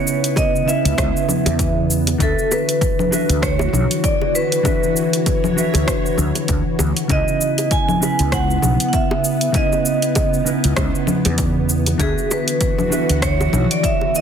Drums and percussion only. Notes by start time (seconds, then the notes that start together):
0.07 shaker
0.24 closed hi-hat, shaker
0.36 kick, closed hi-hat, high bongo, shaker
0.56 shaker
0.69 shaker
0.85 closed hi-hat, shaker
0.98 kick, cross-stick, closed hi-hat, high bongo, shaker
1.17 shaker
1.29 low conga, shaker
1.46 closed hi-hat, high bongo, shaker
1.59 kick, closed hi-hat, shaker
1.91 shaker
2.07 closed hi-hat, high bongo, shaker
2.20 kick, closed hi-hat, shaker
2.39 shaker
2.51 high bongo, shaker
2.69 closed hi-hat, shaker
2.81 kick, closed hi-hat, shaker
2.99 low conga, shaker
3.12 high bongo, shaker
3.30 closed hi-hat, shaker
3.42 kick, cross-stick, closed hi-hat, shaker
3.59 high bongo, shaker
3.74 low conga, shaker
3.91 closed hi-hat, shaker
4.04 kick, closed hi-hat, shaker
4.22 high bongo
4.35 shaker
4.52 closed hi-hat, shaker
4.65 kick, closed hi-hat, high bongo, shaker
4.84 shaker
4.96 shaker
5.13 closed hi-hat, shaker
5.26 kick, closed hi-hat, high bongo, shaker
5.44 low conga, shaker
5.58 shaker
5.74 closed hi-hat, high bongo, shaker
5.88 kick, cross-stick, closed hi-hat, shaker
6.06 shaker
6.18 low conga, shaker
6.35 closed hi-hat, high bongo, shaker
6.48 kick, closed hi-hat, shaker
6.79 high bongo, shaker
6.97 closed hi-hat, shaker
7.09 kick, closed hi-hat, shaker
7.28 shaker
7.41 shaker
7.58 closed hi-hat, high bongo, shaker
7.71 kick, closed hi-hat, shaker
7.89 low conga, shaker
8.02 high bongo, shaker
8.19 closed hi-hat, shaker
8.32 kick, cross-stick, closed hi-hat, shaker
8.50 shaker
8.62 high bongo, low conga, shaker
8.80 closed hi-hat, shaker
8.93 kick, closed hi-hat, shaker
9.11 high bongo
9.24 shaker
9.41 closed hi-hat, shaker
9.54 kick, closed hi-hat, shaker
9.73 high bongo, shaker
9.86 shaker
10.02 closed hi-hat, shaker
10.15 kick, closed hi-hat, high bongo, shaker
10.34 shaker
10.47 shaker
10.64 closed hi-hat, shaker
10.77 kick, cross-stick, closed hi-hat, high bongo, shaker
10.95 shaker
11.07 low conga, shaker
11.25 closed hi-hat, high bongo, shaker
11.38 kick, closed hi-hat, shaker
11.69 shaker
11.86 closed hi-hat, high bongo, shaker
11.99 kick, closed hi-hat, shaker
12.18 shaker
12.31 high bongo, shaker
12.48 closed hi-hat, shaker
12.61 kick, closed hi-hat, shaker
12.79 low conga, shaker
12.92 high bongo, shaker
13.09 closed hi-hat, shaker
13.22 kick, cross-stick, closed hi-hat, shaker
13.41 high bongo, shaker
13.53 low conga, shaker
13.71 closed hi-hat, shaker
13.84 kick, closed hi-hat, shaker
14.01 high bongo
14.15 shaker